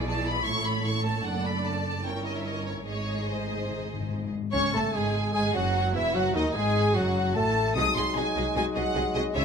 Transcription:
Already playing: B1 B2 E3 E4 G#4 D5
0.07 A5
0.25 B5
0.45 A1 A2 A3 A4 C#5 C#6
0.64 B5
0.84 C#6
1.05 A5
1.24 F#1 F#2 D4 D5 F#5
1.45 B5
1.66 A5
2.04 G1 G2 C#4 E4 A#4 C#5 G5
2.25 D#5
2.36 E5
2.45 D#5
2.66 C#5
2.86 G#1 G#2 G#3 D#4 G#4 C#5 D#5
3.02 G#2
3.17 G#2
3.24 G#2
3.28 C5
3.33 G#2
3.40 G#2
3.48 G#2
3.55 G#2
3.63 G#2
3.70 G#2
3.78 G#2
3.86 G#2
3.93 G#2
4.00 G#2
4.09 G#2
4.16 G#2
4.25 G#2
4.33 G#2
4.42 G#2
4.52 C#2 C#3 C#4 C#5 C#6
4.73 A1 A2 A3 A4 A5
4.93 G#1 G#2 G#3 G#4 G#5
5.33 G#1 G#2 G#3 G#4 G#5
5.54 F#1 F#2 F#3 F#4 F#5
5.93 E1 E2 E3 E4 E5
6.14 F#1 F#2 F#3 F#4 F#5
6.35 D#2 D#3 D#4 D#5
6.54 G#1 G#2 G#3 G#4 G#5
6.94 F#1 F#2 F#3 F#4 F#5
7.35 A1 A2 A3 A4 A5
7.75 C2 C3 F#3 G#3 D#4 F#4 G#4 D#5 D#6
7.96 C2 C3 G#3 F#4 G#4 D#5 C6
8.15 C2 C3 G#3 F#4 G#4 D#5 G#5
8.36 C2 C3 G#3 F#4 G#4 D#5
8.56 C2 C3 G#3 F#4 G#4 D#5 G#5
8.75 C2 C3 G#3 F#4 G#4 D#5 F#5
8.95 C2 C3 G#3 F#4 G#4 D#5
9.15 C2 C3 G#3 F#4 G#4 D#5
9.34 C#2 C#3 E3 G#3 C#4 E4 G#4 C#5 E5

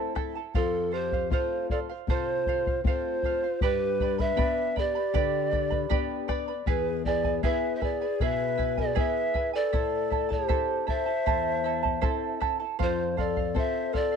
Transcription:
Already playing: A3 C4 E4 A4 C5 E5 A5
0.15 E4 A4 E5 A5, bombo rim, bombo low
0.35 E4 A4 A5
0.55 F2 F4 A4 C5 F5, bombo low
0.91 G4 A4 C5 F5
1.12 C5 F5, bombo low
1.30 A3 C4 F4 A4 C5 F5, bombo low
1.70 A4 C5 D5 F5, bombo low
1.89 C5 F5
2.07 C3 F4 A4 C5 F5, bombo low
2.46 A4 C5 F5, bombo low
2.67 C5 F5, bombo low
2.84 A3 C4 F4 A4 C5 F5, bombo low
3.23 A4 C5 F5, bombo low
3.44 C5 F5
3.61 G2 G4 B4 D5 G5 B5, bombo low
4.00 B4 D5 G5 B5, bombo low
4.18 B4 D5 E5 B5, bombo low
4.36 B3 D4 G4 B4 D5 G5 B5, bombo low
4.76 G4 B4 D5 G5 B5, bombo low
4.95 B4 D5 B5
5.14 D3 G4 B4 D5 G5 B5, bombo low
5.51 B4 D5 G5 B5, bombo low
5.70 B4 D5 B5, bombo low
5.90 B3 D4 G4 B4 D5 G5 B5, bombo low
6.28 B4 D5 G5 B5, bombo rim, bombo low
6.48 B4 D5 B5
6.66 E2 E4 G#4 B4 E5 G#5, bombo low
7.05 E4 G#4 B4 D5 E5 G#5, bombo low
7.24 E4 B4 G#5, bombo low
7.43 B3 E4 G#4 B4 E5 G#5, bombo low
7.75 C5 E5
7.80 E4 G#4 B4 D5 E5 G#5, bombo low
8.01 E4 B4 G#5
8.20 B2 E4 G#4 B4 E5 G#5, bombo low
8.57 E4 B4 E5 G#5, bombo low
8.77 E4 G#4 B4 D5 G#5, bombo low
8.95 B3 E4 G#4 B4 E5 G#5, bombo low
9.34 E4 B4 E5 G#5, bombo low
9.53 E4 A4 B4 D5 G#5
9.73 A2 E4 A4 C5 E5 A5, bombo low
10.10 E4 A4 E5 A5, bombo low
10.29 E4 G4 A4 C5 A5, bombo low
10.48 C4 E4 A4 C5 E5 A5, bombo low
10.87 E4 A4 C5 E5 A5, bombo low
11.06 E4 A4 A5
11.26 E2 E4 A4 C5 E5 A5, bombo low
11.64 E4 A4 E5 A5
11.83 E4 A4 A5, bombo low
12.01 C4 E4 A4 C5 E5 A5, bombo low
12.40 E4 A4 E5 A5, bombo rim, bombo low
12.60 E4 A4 A5
12.79 F2 F4 A4 C5 F5, bombo low
13.17 A4 C5 D5 F5, bombo low
13.37 C5 F5, bombo low
13.55 C4 F4 A4 C5 E5, bombo low
13.93 A4 C5 D5 F5, bombo low
14.12 F5

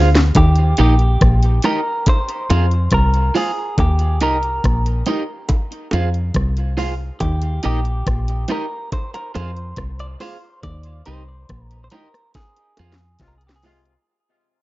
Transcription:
Already playing: D2
0.15 snare, closed hi-hat
0.35 D#2 G4, kick, closed hi-hat, high bongo
0.56 closed hi-hat
0.77 A#1 D#4 G4 A#4 D#5, closed hi-hat
0.99 closed hi-hat
1.21 A#1, kick, cross-stick, closed hi-hat
1.43 closed hi-hat
1.62 D#4 G4 A#4 D#5, cross-stick, closed hi-hat, low bongo
2.06 C5, kick, closed hi-hat, high bongo
2.29 closed hi-hat
2.50 F2 F4 G#4 C5 F5, closed hi-hat, high bongo
2.71 closed hi-hat
2.91 C2 A#4, kick, cross-stick, closed hi-hat
3.14 closed hi-hat
3.35 F4 G#4 C5 F5, open hi-hat, low bongo
3.78 D#2 G4, kick, closed hi-hat, high bongo
3.99 closed hi-hat
4.21 C2 D#4 G4 A#4 D#5, closed hi-hat
4.43 closed hi-hat
4.64 A#1, kick, cross-stick, closed hi-hat
4.86 closed hi-hat
5.06 D#4 G4 A#4 D#5, closed hi-hat, low bongo
5.49 kick, closed hi-hat, high bongo
5.72 closed hi-hat
5.91 F2 F4 G#4 C5 F5, closed hi-hat, high bongo
6.14 closed hi-hat
6.34 C2, kick, cross-stick, closed hi-hat
6.57 closed hi-hat
6.77 F4 G#4 C5 F5, open hi-hat, low bongo
7.20 D#2 G4, kick, closed hi-hat, high bongo
7.42 closed hi-hat
7.63 A#1 D#4 G4 A#4 D#5, closed hi-hat
7.85 closed hi-hat
8.07 A#1, kick, cross-stick, closed hi-hat
8.28 closed hi-hat
8.48 D#4 G4 A#4 D#5, cross-stick, closed hi-hat, low bongo
8.92 C5, kick, closed hi-hat, high bongo
9.14 A#4, muted clean electric guitar stroke, closed hi-hat
9.35 F2 F4 G#4 C5 F5, closed hi-hat, high bongo
9.57 closed hi-hat
9.76 C2, kick, cross-stick, closed hi-hat
9.99 D5, closed hi-hat
10.20 F4 G#4 C5 F5, open hi-hat, low bongo
10.63 D#2 D5, kick, closed hi-hat, high bongo
10.83 closed hi-hat
11.06 C2 D#4 G4 A#4 C5 D#5, closed hi-hat
11.49 A#1, kick, cross-stick, closed hi-hat
11.65 A#4
11.71 closed hi-hat
11.84 C5
11.90 D#4 G4 A#4 D#5, closed hi-hat, low bongo
12.14 cross-stick, closed hi-hat
12.34 G#4, kick, snare, closed hi-hat, high bongo
12.56 closed hi-hat
12.77 F2 F4 G#4 C5 F5, closed hi-hat, high bongo
12.92 snare
12.99 closed hi-hat
13.19 C2 C3 G#3 F4, kick, snare, closed hi-hat
13.28 A#4
13.38 G#4, closed hi-hat
13.47 G4, snare
13.56 G#4
13.63 C3 G#3 F4 G#4 C5 F5, open hi-hat, low bongo
13.85 closed hi-hat

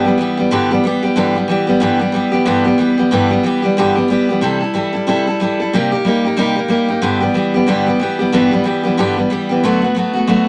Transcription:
0.05 E3 G3 B3 G4
0.18 E3 G3 B3 G4
0.37 E3 G3 B3 G4
0.51 G2 D3 E3 G3 B3 G4
0.71 E3 G3 B3 G4
0.84 E3 G3 B3 G4
1.03 E3 G3 B3 G4
1.16 G2 D3 E3 G3 B3 G4
1.35 E3 G3 B3 G4
1.48 E3 G3 B3 G4
1.67 E3 G3 B3 G4
1.80 G2 D3 E3 G3 B3 G4
1.99 E3 G3 B3 G4
2.12 E3 G3 B3 G4
2.32 E3 G3 B3 G4
2.45 G2 D3 E3 G3 B3 G4
2.64 E3 G3 B3 G4
2.78 E3 G3 B3 G4
2.98 E3 G3 B3 G4
3.11 G2 D3 E3 G3 B3 G4
3.30 E3 G3 B3 G4
3.43 E3 G3 B3 G4
3.62 E3 G3 B3 G4
3.77 G2 D3 E3 G3 B3 G4
3.95 E3 G3 B3 G4
4.08 E3 G3 B3 G4
4.29 E3 G3 B3 G4
4.41 C3 E3 G3 E4 A4
4.61 G3 E4 A4
4.74 E3 G3 E4 A4
4.93 G3 E4 A4
5.07 C3 E3 G3 E4 A4
5.27 G3 E4 A4
5.40 E3 G3 E4 A4
5.60 G3 E4 A4
5.73 C3 G3 A#3 D#4 G4
5.92 A#3 D#4 G4
6.05 G3 A#3 D#4 G4
6.25 A#3 D#4 G4
6.37 C3 G3 A#3 D#4 G4
6.56 A#3 D#4 G4
6.68 G3 A#3 D#4 G4
6.88 A#3 D#4 G4
7.02 G2 D3 E3 G3 B3 G4
7.20 E3 G3 B3 G4
7.34 E3 G3 B3 G4
7.54 E3 G3 B3 G4
7.67 G2 D3 E3 G3 B3 G4
7.86 E3 G3 B3 G4
8.00 E3 G3 B3 G4
8.19 E3 G3 B3 G4
8.32 G2 D3 E3 G3 B3 G4
8.51 E3 G3 B3 G4
8.64 E3 G3 B3 G4
8.83 E3 G3 B3 G4
8.97 G2 D3 E3 G3 B3 G4
9.16 E3 G3 B3 G4
9.30 E3 G3 B3 G4
9.49 E3 G3 B3 G4
9.63 D3 F#3 A3 B3 F#4
9.82 A3 B3 F#4
9.95 F#3 A3 B3
9.99 F#4
10.13 A3 B3 F#4
10.27 D3 F#3 A3 B3 F#4

